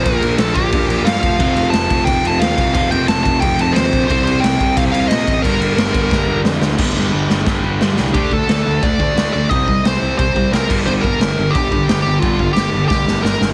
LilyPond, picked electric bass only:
\new Staff \with { instrumentName = "Picked electric bass" } { \clef bass \time 4/4 \key g \minor \tempo 4 = 177 bes,,8 bes,,8 bes,,8 bes,,8 bes,,8 bes,,8 g,8 f,,8 | f,,8 f,,8 f,,8 f,,8 f,,8 f,,8 ees,8 c,8 | f,,8 f,,8 f,,8 f,,8 f,,8 f,,8 ees,8 bes,,8 | c,8 c,8 c,8 c,8 c,8 c,8 bes,8 a,,8 |
g,,8 g,,8 g,,8 g,,8 g,,8 g,,8 f,8 d,8 | g,,8 g,,8 g,,8 g,,8 g,,8 g,,8 g,8 c,8 | d,8 d,8 d,8 d,8 d,8 d,8 d,8 d,8 | c,8 c,8 c,8 c,8 c,8 c,8 c,8 g,,8 |
g,,8 g,,8 g,,8 g,,8 g,,8 g,,8 g,,8 g,,8 | g,,8 g,,8 g,,8 g,,8 g,,8 g,,8 g,,8 g,,8 | }